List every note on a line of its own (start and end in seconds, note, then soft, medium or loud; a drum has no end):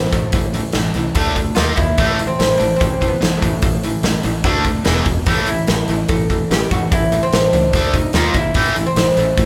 0.00 0.11 A2 medium
0.00 0.11 E3 medium
0.00 0.12 B3 medium
0.00 snare soft
0.12 0.27 A1 medium
0.12 0.32 A2 medium
0.12 0.32 E3 medium
0.12 1.61 A3 medium
0.12 kick medium
0.12 open hi-hat medium
0.32 0.62 A1 medium
0.32 0.52 A2 medium
0.32 0.53 E3 medium
0.32 kick loud
0.32 open hi-hat medium
0.53 0.72 A2 medium
0.53 0.73 E3 medium
0.53 open hi-hat medium
0.73 0.89 A1 medium
0.73 0.93 A2 medium
0.73 0.93 E3 medium
0.73 snare loud
0.73 open hi-hat medium
0.94 1.09 C2 medium
0.94 1.14 A2 medium
0.94 1.14 E3 medium
0.94 open hi-hat soft
1.15 1.44 D2 medium
1.15 1.35 D3 medium
1.15 1.36 A3 medium
1.15 1.36 D4 medium
1.15 kick loud
1.15 open hi-hat medium
1.36 1.55 D3 medium
1.36 1.55 A3 medium
1.36 kick medium
1.36 open hi-hat soft
1.55 1.72 D#2 medium
1.55 1.76 D#3 medium
1.55 1.76 A#3 medium
1.55 1.77 D#4 medium
1.55 1.75 F4 medium
1.55 snare loud
1.55 open hi-hat medium
1.76 1.92 D#2 medium
1.76 1.96 D#3 medium
1.76 1.97 A#3 medium
1.76 2.24 E4 loud
1.76 kick medium
1.76 open hi-hat medium
1.98 2.27 A1 medium
1.98 2.17 A2 medium
1.98 2.17 E3 medium
1.98 2.18 A3 medium
1.98 kick loud
1.98 open hi-hat medium
2.19 2.37 A2 medium
2.19 2.38 E3 medium
2.19 open hi-hat medium
2.27 2.57 C4 medium
2.40 2.54 A1 medium
2.40 2.58 A2 medium
2.40 2.58 E3 medium
2.40 snare loud
2.40 open hi-hat medium
2.58 2.75 A1 medium
2.58 2.78 A2 medium
2.58 2.78 E3 medium
2.58 2.76 D4 medium
2.58 open hi-hat medium
2.76 3.10 C4 medium
2.80 3.10 A1 medium
2.80 2.99 A2 medium
2.80 2.99 E3 medium
2.80 kick loud
2.80 open hi-hat medium
3.01 3.19 A2 medium
3.01 3.19 E3 medium
3.01 kick medium
3.01 open hi-hat medium
3.08 3.37 B3 medium
3.21 3.37 A1 medium
3.21 3.40 A2 medium
3.21 3.40 E3 medium
3.21 snare loud
3.21 open hi-hat medium
3.37 5.00 A3 medium
3.41 3.57 A1 medium
3.41 3.60 A2 medium
3.41 3.60 E3 medium
3.41 kick medium
3.41 open hi-hat medium
3.62 3.92 A1 medium
3.62 3.81 A2 medium
3.62 3.81 E3 medium
3.62 kick loud
3.62 open hi-hat medium
3.83 4.02 A2 medium
3.83 4.02 E3 medium
3.83 open hi-hat medium
4.03 4.18 A1 medium
4.03 4.22 A2 medium
4.03 4.22 E3 medium
4.03 snare loud
4.03 open hi-hat medium
4.23 4.44 A1 medium
4.23 4.42 A2 medium
4.23 4.43 E3 medium
4.23 open hi-hat medium
4.44 4.73 D2 loud
4.44 4.64 D3 medium
4.44 4.64 A3 medium
4.44 4.65 D4 medium
4.44 kick loud
4.44 open hi-hat medium
4.64 4.84 D3 medium
4.64 4.84 A3 medium
4.64 kick medium
4.64 open hi-hat medium
4.85 5.00 E1 medium
4.85 5.04 E2 medium
4.85 5.05 B2 medium
4.85 5.06 E3 medium
4.85 snare loud
4.85 open hi-hat medium
4.96 snare soft
5.05 5.21 E1 medium
5.05 5.24 E2 medium
5.05 5.25 B2 medium
5.05 kick medium
5.05 open hi-hat medium
5.26 5.56 A1 medium
5.26 5.46 A2 medium
5.26 5.46 E3 medium
5.26 5.47 A3 medium
5.26 kick loud
5.26 open hi-hat medium
5.46 5.66 A2 medium
5.46 5.66 E3 medium
5.46 6.08 E4 medium
5.46 open hi-hat medium
5.67 5.83 A1 medium
5.67 5.86 A2 medium
5.67 5.87 E3 medium
5.67 snare loud
5.67 open hi-hat medium
5.88 6.03 A1 medium
5.88 6.08 A2 medium
5.88 6.08 E3 medium
5.88 open hi-hat medium
6.08 6.38 A1 medium
6.08 6.28 A2 medium
6.08 6.28 E3 medium
6.08 6.51 A4 medium
6.08 kick loud
6.08 open hi-hat medium
6.30 6.48 A2 medium
6.30 6.48 E3 medium
6.30 kick medium
6.30 open hi-hat soft
6.50 6.65 A1 medium
6.50 6.69 A2 medium
6.50 6.70 E3 medium
6.50 6.71 G4 loud
6.50 snare loud
6.50 open hi-hat medium
6.63 snare soft
6.71 6.85 A1 medium
6.71 6.90 A2 medium
6.71 6.90 E3 medium
6.71 6.92 F#4 medium
6.71 kick medium
6.71 open hi-hat medium
6.92 7.21 A1 medium
6.92 7.10 A2 medium
6.92 7.10 E3 medium
6.92 7.22 E4 loud
6.92 kick loud
6.92 open hi-hat medium
7.12 7.30 A2 medium
7.12 7.31 E3 medium
7.12 open hi-hat medium
7.23 7.52 C4 medium
7.33 7.47 A1 medium
7.33 7.51 A2 medium
7.33 7.51 E3 medium
7.33 snare loud
7.33 open hi-hat medium
7.53 7.74 C#2 medium
7.53 7.72 A2 medium
7.53 7.72 E3 medium
7.53 7.91 D4 medium
7.53 open hi-hat medium
7.73 8.03 D2 medium
7.73 7.92 D3 medium
7.73 7.93 A3 medium
7.73 7.93 D4 medium
7.73 kick loud
7.73 open hi-hat medium
7.93 8.12 D3 medium
7.93 8.13 A3 medium
7.93 8.14 D#4 medium
7.93 kick medium
7.93 open hi-hat medium
8.13 8.28 D#2 medium
8.13 8.34 D#3 medium
8.13 8.34 A#3 medium
8.13 8.34 D#4 medium
8.13 8.36 F4 medium
8.13 snare loud
8.13 open hi-hat medium
8.34 8.49 G#1 medium
8.34 8.54 D#3 medium
8.34 8.54 A#3 medium
8.34 8.86 E4 loud
8.34 kick medium
8.34 open hi-hat medium
8.54 8.84 A1 medium
8.54 8.75 A2 medium
8.54 8.76 E3 medium
8.54 8.76 A3 medium
8.54 kick loud
8.54 open hi-hat medium
8.76 8.95 A2 medium
8.76 8.95 E3 medium
8.76 open hi-hat soft
8.86 9.18 C4 medium
8.96 9.11 A1 medium
8.96 9.16 A2 medium
8.96 9.16 E3 medium
8.96 snare loud
8.96 open hi-hat medium
9.17 9.32 A1 medium
9.17 9.36 A2 medium
9.17 9.37 E3 medium
9.17 9.46 A3 medium
9.17 open hi-hat soft
9.38 9.46 A1 loud
9.38 9.46 A2 medium
9.38 9.46 E3 medium
9.38 kick loud
9.38 open hi-hat medium